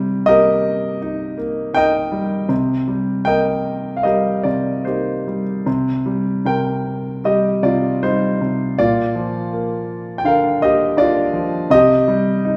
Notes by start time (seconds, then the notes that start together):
Already playing: C3 G3
0.26 A#3 G4 A#4 D#5
1.02 D#4
1.38 A#3
1.74 D#4 A#4 D#5 G5
2.12 G3
2.49 C3
2.88 G3
3.25 A#3 A#4 D#5 G5
3.97 F5
4.03 G3 G4 A#4 D#5
4.43 C3 D5
4.85 A#3 D#4 G4 C5
5.27 G3
5.66 C3
6.06 G3
6.45 C3 A#4 G5
7.24 G3 G4 D#5
7.63 C3 F4 D5
8.03 G3 D#4 C5
8.41 C3
8.78 A#2 F4 D5
9.15 F3
9.53 A#3
10.18 G5
10.25 D3 A#4 F5
10.61 A#3 G4 D#5
10.97 D4 F4 D5
11.33 F3
11.70 C3 G4 D#5
12.08 G3
12.45 D#4